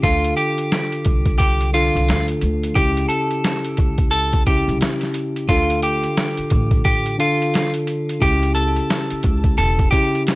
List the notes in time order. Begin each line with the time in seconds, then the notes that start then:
0.02 D2 D3 D4 F4 A4, kick, closed hi-hat
0.25 closed hi-hat
0.37 G4, closed hi-hat
0.58 closed hi-hat
0.72 snare, closed hi-hat
0.92 closed hi-hat
1.05 C2, kick, closed hi-hat
1.25 kick, closed hi-hat
1.38 G4, kick, closed hi-hat
1.61 closed hi-hat
1.73 D3 D4 F4 A4, closed hi-hat
1.95 C2, closed hi-hat
2.08 D2, snare, closed hi-hat
2.28 closed hi-hat
2.41 D2, closed hi-hat
2.63 closed hi-hat
2.74 C#2 C#3 C#4 E4 G4, kick, closed hi-hat
2.97 closed hi-hat
3.09 A4, closed hi-hat
3.31 closed hi-hat
3.44 snare, closed hi-hat
3.65 closed hi-hat
3.77 C#2, kick, closed hi-hat
3.98 kick, closed hi-hat
4.11 A4, closed hi-hat
4.33 kick, closed hi-hat
4.46 C#3 C#4 E4 G4, kick, closed hi-hat
4.68 C2, closed hi-hat
4.81 snare, closed hi-hat
5.01 snare, closed hi-hat
5.14 closed hi-hat
5.36 closed hi-hat
5.48 D2 D3 D4 F4 A4, kick, closed hi-hat
5.70 closed hi-hat
5.82 G4, closed hi-hat
6.03 closed hi-hat
6.17 snare, closed hi-hat
6.37 muted upright bass stroke, closed hi-hat
6.50 A1, kick, closed hi-hat
6.71 kick, closed hi-hat
6.85 A1 G4, kick, closed hi-hat
7.06 closed hi-hat
7.18 D3 D4 F4 A4, closed hi-hat
7.42 closed hi-hat
7.54 snare, closed hi-hat
7.74 closed hi-hat
7.87 closed hi-hat
8.09 closed hi-hat
8.20 C#2 C#3 C#4 E4 G4, kick, closed hi-hat
8.43 closed hi-hat
8.55 A4, closed hi-hat
8.76 closed hi-hat
8.90 snare, closed hi-hat
9.10 muted upright bass stroke, closed hi-hat
9.23 C#2, kick, closed hi-hat
9.44 kick, closed hi-hat
9.58 E1 A4, closed hi-hat
9.79 kick, closed hi-hat
9.91 C#3 C#4 E4 G4, kick, closed hi-hat
10.15 closed hi-hat
10.27 snare, closed hi-hat